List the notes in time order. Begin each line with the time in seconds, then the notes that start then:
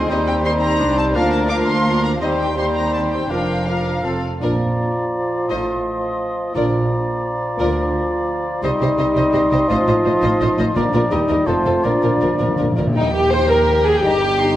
Already playing: D2 C4 F4
0.10 D#2 G3 D#4 G4 C5 D#5
0.27 G5
0.44 G3 C4 D#4 C5 C6
0.62 A#5
0.79 C2 D4 G4
0.98 C4 A5
1.15 D2 F3 A#3 D4 F4 A#4 D5 F5
1.32 A5
1.48 F3 D4 F4 A#4 F5 D6
1.66 C6
1.86 A#3 D4 A#4 F5
2.03 A#5
2.21 D#2 G3 C4 D#4 G4 C5 D#5
2.39 G5
2.57 G3 C4 D#4 G4 C5 C6
2.75 A#5
2.93 A5
3.11 G5
3.30 F1 F2 F3 D4 F4 A#4 F5 G5
3.67 F3 D4 F4 A#4 F5
4.04 F1 F2 F3 C4 F4 A4 F5
4.41 A#1 A#2 F3 D4 F4 A#4 D5 A#5
5.48 A1 A2 F3 D#4 F4 C5 D#5 C6
6.54 A#1 A#2 F3 D4 F4 A#4 D5 A#5
7.57 D2 D3 F3 A#3 F4 A#4 D5
8.62 C2 C3 G3 D#4 G4 C5 D#5 C6
8.81 C2 C3 G4 C5 D#5
8.97 C2 C3 G4 C5 D#5
9.15 C2 C3 G4 C5 D#5
9.33 C2 C3 G4 C5 D#5
9.50 C2 C3 G4 C5 D#5
9.68 A1 A2 F3 F4 C5 D#5
9.87 A1 A2 F4 C5 D#5
10.05 A1 A2 F4 C5 D#5
10.22 A1 A2 F4 C5 D#5
10.40 A1 A2 F4 C5 D#5
10.57 A1 A2 F4 C5 D#5
10.74 A#1 A#2 D4 F4 A#4 D5 A#5
10.93 A#1 A#2 F4 A#4 D5
11.11 D#2 G3 D#4 G4 A#4 D#5
11.29 D#2 G4 A#4 D#5
11.46 F1 F2 F3 A3 C4 F4 A4 C5 A5
11.66 F1 F2 F4 A4 C5
11.84 A#1 A#2 A#3 D4 F4 A#4 D5 A#5
12.00 A#1 A#2 F4 A#4 D5
12.09 A#2
12.16 A#2
12.21 A#1 A#2 F4 A#4 D5
12.33 A#2
12.38 A#1 A#2 F4 A#4 D5
12.48 A#2
12.56 A#1 A#2 F4 A#4 D5
12.63 A#2
12.72 A#2
12.76 A#1 A#2 F4 A#4 D5
12.87 A#2
12.95 D#2 G3 D#4 G5
13.14 G4
13.32 G4 C5 G5
13.50 A#4
13.86 G#4
14.02 G1 G3 D#4 G4 A#5
14.22 D6
14.38 D#4 C6